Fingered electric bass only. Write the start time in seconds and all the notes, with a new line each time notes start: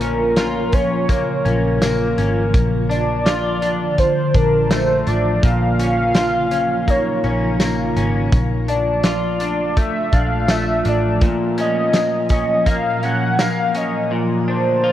Already playing: A#1
1.46 A#1
2.18 G#1
2.54 A#1
4.35 A#1
5.07 A1
5.43 A#1
7.24 A#1
7.96 G#1
8.32 A#1
10.13 A#1
10.86 A1